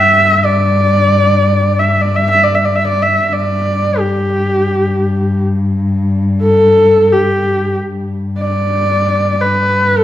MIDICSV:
0, 0, Header, 1, 3, 480
1, 0, Start_track
1, 0, Tempo, 500000
1, 9637, End_track
2, 0, Start_track
2, 0, Title_t, "Horsehead fiddle"
2, 0, Program_c, 0, 110
2, 0, Note_on_c, 0, 76, 92
2, 433, Note_on_c, 0, 74, 84
2, 448, Note_off_c, 0, 76, 0
2, 1720, Note_on_c, 0, 76, 68
2, 1734, Note_off_c, 0, 74, 0
2, 1931, Note_on_c, 0, 74, 67
2, 1946, Note_off_c, 0, 76, 0
2, 2072, Note_on_c, 0, 76, 76
2, 2087, Note_off_c, 0, 74, 0
2, 2206, Note_off_c, 0, 76, 0
2, 2212, Note_on_c, 0, 76, 84
2, 2336, Note_on_c, 0, 74, 75
2, 2350, Note_off_c, 0, 76, 0
2, 2448, Note_on_c, 0, 76, 67
2, 2463, Note_off_c, 0, 74, 0
2, 2541, Note_on_c, 0, 74, 66
2, 2556, Note_off_c, 0, 76, 0
2, 2647, Note_on_c, 0, 76, 74
2, 2661, Note_off_c, 0, 74, 0
2, 2757, Note_off_c, 0, 76, 0
2, 2762, Note_on_c, 0, 74, 75
2, 2903, Note_on_c, 0, 76, 69
2, 2917, Note_off_c, 0, 74, 0
2, 3199, Note_on_c, 0, 74, 72
2, 3213, Note_off_c, 0, 76, 0
2, 3833, Note_on_c, 0, 67, 64
2, 3848, Note_off_c, 0, 74, 0
2, 5211, Note_off_c, 0, 67, 0
2, 6169, Note_on_c, 0, 69, 82
2, 6840, Note_on_c, 0, 67, 68
2, 6854, Note_off_c, 0, 69, 0
2, 7452, Note_off_c, 0, 67, 0
2, 8054, Note_on_c, 0, 74, 78
2, 9031, Note_on_c, 0, 71, 81
2, 9045, Note_off_c, 0, 74, 0
2, 9575, Note_on_c, 0, 69, 81
2, 9590, Note_off_c, 0, 71, 0
2, 9637, Note_off_c, 0, 69, 0
2, 9637, End_track
3, 0, Start_track
3, 0, Title_t, "Cello"
3, 0, Program_c, 1, 42
3, 0, Note_on_c, 1, 43, 64
3, 3109, Note_off_c, 1, 43, 0
3, 3115, Note_on_c, 1, 43, 68
3, 7564, Note_off_c, 1, 43, 0
3, 7570, Note_on_c, 1, 43, 55
3, 9637, Note_off_c, 1, 43, 0
3, 9637, End_track
0, 0, End_of_file